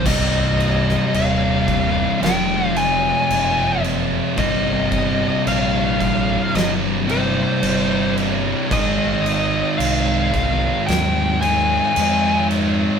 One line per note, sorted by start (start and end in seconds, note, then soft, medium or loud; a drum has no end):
0.05 0.95 C1 loud
0.05 2.18 C2 medium
0.05 2.19 G2 medium
0.05 2.19 C3 loud
0.05 2.19 G3 loud
0.05 2.19 D#4 loud
0.05 1.15 D#5 medium
0.05 kick loud
0.05 crash loud
0.05 crash medium
0.60 crash medium
0.89 snare soft
1.14 2.03 D#1 loud
1.14 2.19 F5 loud
1.14 crash medium
1.67 2.20 C2 medium
1.67 2.19 G2 medium
1.67 2.18 C3 medium
1.67 kick medium
1.67 crash medium
2.21 3.11 F1 loud
2.21 4.35 F2 loud
2.21 4.35 C3 medium
2.21 4.35 F3 loud
2.21 4.35 G#3 loud
2.21 5.72 C4 medium
2.21 4.36 F4 loud
2.21 2.67 G5 loud
2.21 snare loud
2.21 crash medium
2.67 2.77 F5 loud
2.76 3.81 G#5 loud
2.76 crash medium
3.30 4.19 F#1 loud
3.30 crash medium
3.82 4.36 F2 medium
3.82 4.35 C3 medium
3.82 4.34 F3 medium
3.82 crash medium
4.37 5.27 G1 medium
4.37 7.05 C2 loud
4.37 7.05 G2 loud
4.37 7.06 C3 loud
4.37 7.06 G3 loud
4.37 7.06 D#4 loud
4.37 5.43 D#5 medium
4.37 kick loud
4.37 crash medium
4.92 kick medium
4.92 crash medium
5.46 6.35 A#1 loud
5.46 6.55 F5 loud
5.46 crash medium
5.98 7.60 C2 medium
5.98 7.60 G2 medium
5.98 7.59 C3 loud
5.98 kick medium
5.98 crash medium
6.54 7.43 G1 medium
6.54 6.70 D#5 loud
6.54 snare loud
6.54 crash medium
7.08 7.60 C2 medium
7.08 7.60 G2 medium
7.08 7.60 C3 medium
7.08 7.60 G3 medium
7.08 7.59 D#4 medium
7.08 8.14 C5 medium
7.08 crash medium
7.61 8.51 G1 medium
7.61 8.67 C2 medium
7.61 8.67 G2 medium
7.61 8.68 C3 medium
7.61 8.68 G3 medium
7.61 8.68 D#4 loud
7.61 crash loud
8.17 crash medium
8.70 9.60 G#1 loud
8.70 11.38 G#2 medium
8.70 11.39 D#3 loud
8.70 11.39 G#3 loud
8.70 11.39 C4 loud
8.70 11.39 D#4 loud
8.70 11.39 G#4 loud
8.70 9.76 D#5 medium
8.70 kick loud
8.70 crash medium
9.26 crash medium
9.78 10.68 C2 loud
9.78 10.83 F5 medium
9.78 crash loud
10.32 11.93 G#2 medium
10.32 11.93 D#3 medium
10.32 11.92 G#3 loud
10.32 kick medium
10.32 crash medium
10.87 11.77 D#2 loud
10.87 11.38 G5 loud
10.87 snare loud
10.87 crash medium
11.40 11.93 G#2 medium
11.40 11.93 D#3 medium
11.40 11.93 G#3 medium
11.40 11.93 C4 medium
11.40 11.92 D#4 loud
11.40 11.92 G#4 medium
11.40 12.46 G#5 loud
11.40 crash medium
11.95 12.85 F2 loud
11.95 12.99 G#2 medium
11.95 12.99 D#3 medium
11.95 12.99 G#3 medium
11.95 12.99 C4 medium
11.95 12.99 D#4 loud
11.95 12.99 G#4 medium
11.95 crash loud
12.51 crash medium